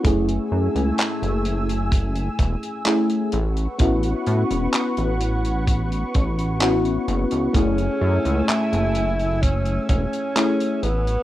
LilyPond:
<<
  \new Staff \with { instrumentName = "Analog synth pad" } { \time 4/4 \key fis \minor \tempo 4 = 64 <a gis'' e'''>2.~ <a gis'' e'''>8 <b' fis'' cis'''>8~ | <b' fis'' cis'''>1 | <a gis'' e'''>2.~ <a gis'' e'''>8 <b' fis'' cis'''>8 | }
  \new Staff \with { instrumentName = "FM electric piano" } { \time 4/4 \key fis \minor <a cis' e' gis'>2. <a cis' e' gis'>8 r8 | <b cis' e' fis'>2. <b cis' e' fis'>8 r8 | <a cis' e' gis'>2. <a cis' e' gis'>8 r8 | }
  \new Staff \with { instrumentName = "Tenor saxophone" } { \time 4/4 \key fis \minor r1 | r1 | cis'4 e'4 cis'8 cis'4 b8 | }
  \new Staff \with { instrumentName = "Analog synth bass" } { \clef bass \time 4/4 \key fis \minor fis,,16 r16 fis,16 cis,16 r16 fis,,4~ fis,,16 e,,16 r8. a,,16 r16 | a,,16 r16 a,16 e,,16 r16 a,,4~ a,,16 a,,4 fis,,16 cis,16 | fis,,16 r16 fis,16 cis,16 r16 fis,,4~ fis,,16 e,,16 r8. a,,16 r16 | }
  \new DrumStaff \with { instrumentName = "Drums" } \drummode { \time 4/4 <hh bd>16 hh8 hh16 <hc hh>16 hh16 hh16 hh16 <hh bd>16 hh16 <hh bd>16 hh16 <hc hh>16 hh16 hh16 hh16 | <hh bd>16 hh16 hh16 hh16 <hc hh>16 hh16 hh16 hh16 <hh bd>16 hh16 <hh bd>16 hh16 <hc hh>16 hh16 hh16 hh16 | <hh bd>16 hh8 hh16 <hc hh>16 hh16 hh16 hh16 <hh bd>16 hh16 <hh bd>16 hh16 <hc hh>16 hh16 hh16 hh16 | }
>>